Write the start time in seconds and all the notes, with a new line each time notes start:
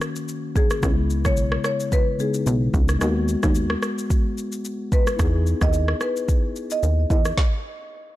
Already playing: D#3 A#3 C#4 F#4
0.01 cross-stick, shaker
0.16 shaker
0.28 shaker
0.56 G#4, kick, shaker
0.70 cross-stick, shaker
0.80 C#2 C#3 G#3 B3, kick, cross-stick, shaker
0.85 E4
1.10 shaker
1.25 B1 C#5, kick, cross-stick, shaker
1.37 shaker
1.52 cross-stick
1.64 C#5, cross-stick, shaker
1.80 shaker
1.92 B4, kick, shaker
2.18 C#3 G#3 B3 D#4 G#4, shaker
2.34 shaker
2.47 B1, shaker
2.74 C#2, kick, shaker
2.89 cross-stick, shaker
2.99 D#2 G#3 B3, cross-stick, shaker
3.04 F#4
3.28 shaker
3.43 D#2, kick, cross-stick, shaker
3.55 shaker
3.70 cross-stick
3.83 cross-stick, shaker
3.98 shaker
4.10 kick, shaker
4.38 shaker
4.52 shaker
4.65 shaker
4.92 B4, kick, shaker
5.07 cross-stick, shaker
5.17 E2 B3 D#4 E4, kick, cross-stick, shaker
5.22 G#4
5.47 shaker
5.61 D#2 D#5, kick, cross-stick, shaker
5.73 shaker
5.88 cross-stick
6.01 B4, cross-stick, shaker
6.17 shaker
6.29 kick, shaker
6.56 shaker
6.71 D#5, shaker
6.83 D#2, shaker
7.10 E2 D#5, kick, shaker
7.25 cross-stick, shaker
7.37 kick, snare